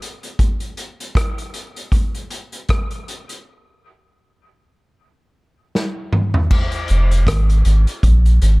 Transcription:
0, 0, Header, 1, 3, 480
1, 0, Start_track
1, 0, Key_signature, -4, "minor"
1, 0, Tempo, 763359
1, 246, Time_signature, 4, 2, 24, 8
1, 5408, End_track
2, 0, Start_track
2, 0, Title_t, "Sub bass"
2, 0, Program_c, 0, 38
2, 4340, Note_on_c, 0, 29, 100
2, 4560, Note_off_c, 0, 29, 0
2, 4572, Note_on_c, 0, 32, 100
2, 4796, Note_off_c, 0, 32, 0
2, 4813, Note_on_c, 0, 32, 91
2, 4941, Note_off_c, 0, 32, 0
2, 5052, Note_on_c, 0, 34, 99
2, 5276, Note_off_c, 0, 34, 0
2, 5294, Note_on_c, 0, 32, 87
2, 5408, Note_off_c, 0, 32, 0
2, 5408, End_track
3, 0, Start_track
3, 0, Title_t, "Drums"
3, 14, Note_on_c, 9, 42, 71
3, 76, Note_off_c, 9, 42, 0
3, 146, Note_on_c, 9, 42, 45
3, 209, Note_off_c, 9, 42, 0
3, 246, Note_on_c, 9, 36, 100
3, 246, Note_on_c, 9, 42, 79
3, 309, Note_off_c, 9, 36, 0
3, 309, Note_off_c, 9, 42, 0
3, 379, Note_on_c, 9, 42, 46
3, 442, Note_off_c, 9, 42, 0
3, 486, Note_on_c, 9, 42, 70
3, 549, Note_off_c, 9, 42, 0
3, 631, Note_on_c, 9, 42, 57
3, 694, Note_off_c, 9, 42, 0
3, 724, Note_on_c, 9, 36, 106
3, 732, Note_on_c, 9, 42, 105
3, 735, Note_on_c, 9, 37, 109
3, 787, Note_off_c, 9, 36, 0
3, 795, Note_off_c, 9, 42, 0
3, 798, Note_off_c, 9, 37, 0
3, 869, Note_on_c, 9, 42, 48
3, 932, Note_off_c, 9, 42, 0
3, 967, Note_on_c, 9, 42, 80
3, 1030, Note_off_c, 9, 42, 0
3, 1109, Note_on_c, 9, 42, 48
3, 1172, Note_off_c, 9, 42, 0
3, 1206, Note_on_c, 9, 36, 101
3, 1209, Note_on_c, 9, 42, 86
3, 1269, Note_off_c, 9, 36, 0
3, 1272, Note_off_c, 9, 42, 0
3, 1349, Note_on_c, 9, 42, 50
3, 1412, Note_off_c, 9, 42, 0
3, 1450, Note_on_c, 9, 42, 75
3, 1513, Note_off_c, 9, 42, 0
3, 1587, Note_on_c, 9, 42, 53
3, 1650, Note_off_c, 9, 42, 0
3, 1689, Note_on_c, 9, 42, 69
3, 1693, Note_on_c, 9, 36, 102
3, 1700, Note_on_c, 9, 37, 96
3, 1752, Note_off_c, 9, 42, 0
3, 1756, Note_off_c, 9, 36, 0
3, 1763, Note_off_c, 9, 37, 0
3, 1828, Note_on_c, 9, 42, 44
3, 1891, Note_off_c, 9, 42, 0
3, 1938, Note_on_c, 9, 42, 72
3, 2001, Note_off_c, 9, 42, 0
3, 2070, Note_on_c, 9, 42, 47
3, 2133, Note_off_c, 9, 42, 0
3, 3616, Note_on_c, 9, 38, 48
3, 3679, Note_off_c, 9, 38, 0
3, 3852, Note_on_c, 9, 45, 81
3, 3915, Note_off_c, 9, 45, 0
3, 3987, Note_on_c, 9, 43, 82
3, 4050, Note_off_c, 9, 43, 0
3, 4091, Note_on_c, 9, 49, 86
3, 4092, Note_on_c, 9, 36, 96
3, 4154, Note_off_c, 9, 49, 0
3, 4155, Note_off_c, 9, 36, 0
3, 4223, Note_on_c, 9, 42, 48
3, 4286, Note_off_c, 9, 42, 0
3, 4326, Note_on_c, 9, 42, 72
3, 4389, Note_off_c, 9, 42, 0
3, 4473, Note_on_c, 9, 42, 59
3, 4536, Note_off_c, 9, 42, 0
3, 4570, Note_on_c, 9, 36, 106
3, 4576, Note_on_c, 9, 42, 103
3, 4578, Note_on_c, 9, 37, 104
3, 4632, Note_off_c, 9, 36, 0
3, 4639, Note_off_c, 9, 42, 0
3, 4641, Note_off_c, 9, 37, 0
3, 4713, Note_on_c, 9, 42, 50
3, 4776, Note_off_c, 9, 42, 0
3, 4810, Note_on_c, 9, 42, 77
3, 4873, Note_off_c, 9, 42, 0
3, 4950, Note_on_c, 9, 42, 52
3, 5013, Note_off_c, 9, 42, 0
3, 5051, Note_on_c, 9, 36, 118
3, 5051, Note_on_c, 9, 42, 86
3, 5113, Note_off_c, 9, 36, 0
3, 5114, Note_off_c, 9, 42, 0
3, 5192, Note_on_c, 9, 42, 50
3, 5255, Note_off_c, 9, 42, 0
3, 5293, Note_on_c, 9, 42, 83
3, 5356, Note_off_c, 9, 42, 0
3, 5408, End_track
0, 0, End_of_file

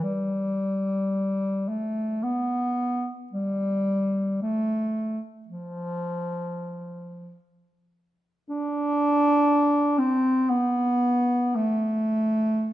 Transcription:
0, 0, Header, 1, 2, 480
1, 0, Start_track
1, 0, Tempo, 500000
1, 12222, End_track
2, 0, Start_track
2, 0, Title_t, "Bass clarinet"
2, 0, Program_c, 0, 71
2, 31, Note_on_c, 0, 55, 57
2, 1618, Note_on_c, 0, 57, 53
2, 1632, Note_off_c, 0, 55, 0
2, 2141, Note_on_c, 0, 59, 56
2, 2156, Note_off_c, 0, 57, 0
2, 3029, Note_off_c, 0, 59, 0
2, 3192, Note_on_c, 0, 55, 58
2, 4227, Note_off_c, 0, 55, 0
2, 4243, Note_on_c, 0, 57, 61
2, 4995, Note_off_c, 0, 57, 0
2, 5261, Note_on_c, 0, 53, 59
2, 7133, Note_off_c, 0, 53, 0
2, 8154, Note_on_c, 0, 62, 84
2, 9582, Note_on_c, 0, 60, 72
2, 9596, Note_off_c, 0, 62, 0
2, 10071, Note_on_c, 0, 59, 74
2, 10085, Note_off_c, 0, 60, 0
2, 11092, Note_on_c, 0, 57, 71
2, 11106, Note_off_c, 0, 59, 0
2, 12222, Note_off_c, 0, 57, 0
2, 12222, End_track
0, 0, End_of_file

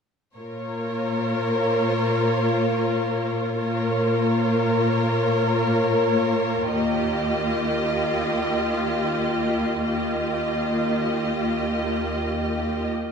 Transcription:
0, 0, Header, 1, 4, 480
1, 0, Start_track
1, 0, Tempo, 500000
1, 12593, End_track
2, 0, Start_track
2, 0, Title_t, "Violin section"
2, 0, Program_c, 0, 48
2, 350, Note_on_c, 0, 70, 34
2, 357, Note_on_c, 0, 73, 38
2, 3403, Note_off_c, 0, 70, 0
2, 3407, Note_off_c, 0, 73, 0
2, 3433, Note_on_c, 0, 73, 40
2, 3437, Note_on_c, 0, 70, 44
2, 6391, Note_off_c, 0, 73, 0
2, 6394, Note_off_c, 0, 70, 0
2, 6440, Note_on_c, 0, 67, 47
2, 6443, Note_on_c, 0, 75, 46
2, 9431, Note_off_c, 0, 67, 0
2, 9433, Note_off_c, 0, 75, 0
2, 9474, Note_on_c, 0, 67, 34
2, 9477, Note_on_c, 0, 75, 36
2, 12393, Note_off_c, 0, 67, 0
2, 12394, Note_off_c, 0, 75, 0
2, 12593, End_track
3, 0, Start_track
3, 0, Title_t, "Viola section"
3, 0, Program_c, 1, 48
3, 371, Note_on_c, 1, 65, 38
3, 372, Note_on_c, 1, 58, 37
3, 3414, Note_off_c, 1, 65, 0
3, 3415, Note_off_c, 1, 58, 0
3, 3454, Note_on_c, 1, 58, 47
3, 3460, Note_on_c, 1, 65, 43
3, 6402, Note_off_c, 1, 58, 0
3, 6405, Note_off_c, 1, 65, 0
3, 6457, Note_on_c, 1, 58, 46
3, 6459, Note_on_c, 1, 65, 45
3, 9440, Note_off_c, 1, 58, 0
3, 9441, Note_off_c, 1, 65, 0
3, 9469, Note_on_c, 1, 58, 37
3, 9472, Note_on_c, 1, 65, 35
3, 12391, Note_off_c, 1, 58, 0
3, 12392, Note_off_c, 1, 65, 0
3, 12593, End_track
4, 0, Start_track
4, 0, Title_t, "Cello section"
4, 0, Program_c, 2, 48
4, 346, Note_on_c, 2, 46, 34
4, 3402, Note_off_c, 2, 46, 0
4, 3446, Note_on_c, 2, 46, 43
4, 6398, Note_off_c, 2, 46, 0
4, 6438, Note_on_c, 2, 39, 42
4, 9430, Note_off_c, 2, 39, 0
4, 9470, Note_on_c, 2, 39, 34
4, 12391, Note_off_c, 2, 39, 0
4, 12593, End_track
0, 0, End_of_file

